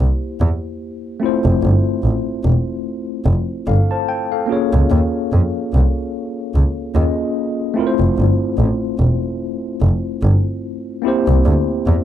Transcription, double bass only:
0.40 E2
1.45 F1
1.63 G1
2.04 A1
2.45 E1
3.26 F1
3.68 G1
4.73 C#2
4.91 D#2
5.32 F2
5.73 C2
6.55 C#2
6.95 D#2
8.00 F1
8.18 G1
8.59 A1
9.00 E1
9.82 F1
10.23 G1
11.28 C2
11.46 D2
11.87 E2

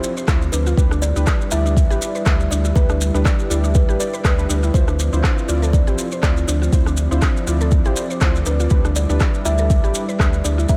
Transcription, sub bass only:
0.28 D2
0.53 D2
0.78 D2
1.16 D2
1.52 D2
1.90 A1
2.26 D2
2.51 D2
2.76 D2
3.14 D2
3.50 D2
3.89 A1
4.25 D2
4.49 D2
4.74 D2
5.13 D2
5.49 D2
5.87 A1
6.23 D2
6.48 D2
6.73 D2
7.11 D2
7.47 D2
7.86 A1
8.21 D2
8.46 D2
8.71 D2
9.10 D2
9.46 D2
9.84 A1
10.20 D2
10.45 D2
10.69 D2

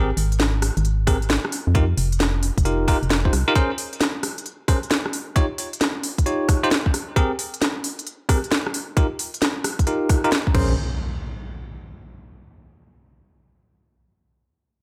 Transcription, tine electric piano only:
1.07 C4 G4 G#4 A#4
1.75 D#4 F4 G4 A#4
2.65 D#4 F4 G4 A#4
2.88 D#4 F4 G4 A#4
3.25 D#4 F4 G4 C5
3.48 D#4 F4 G4 A#4
3.55 C#4 G#4 A#4 C5
4.68 C#4 G#4 A#4 C5
5.36 D#4 F4 G4 C#5
6.26 D#4 F4 G4 C#5
6.63 D#4 F4 G4 C5
7.16 C4 G4 G#4 A#4
8.29 C4 G4 G#4 A#4
8.97 D#4 F4 G4 A#4
9.87 D#4 F4 G4 A#4
10.24 D#4 F4 G4 A#4
10.55 C#4 G#4 A#4 C5

